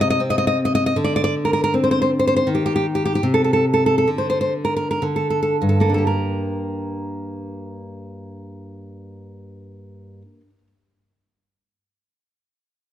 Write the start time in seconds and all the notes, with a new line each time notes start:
Already playing: C3
0.01 D#5
0.10 D#5
0.20 C4
0.30 D#5
0.38 D#5
0.47 D#5
0.65 D#5
0.75 D#5
0.86 D#5
0.96 D3
1.04 D5
1.16 D5
1.24 D5
1.45 A#4
1.53 A#4
1.64 A#4
1.74 C4
1.84 C5
1.91 C5
2.02 C5
2.19 C5
2.27 C5
2.37 C5
2.47 D#3
2.55 G4
2.66 G4
2.76 G4
2.95 G4
3.05 G4
3.15 G4
3.23 C3
3.34 A4
3.44 A4
3.53 A4
3.74 A4
3.86 A4
3.98 A4
4.07 D3
4.18 C5
4.30 C5
4.41 C5
4.65 A#4
4.76 A#4
4.91 A#4
5.02 D3
5.16 A4
5.30 A4
5.43 A4
5.62 G2
5.69 A4
5.80 A#3 A4
5.90 D4
5.94 G4 A4
6.07 A#4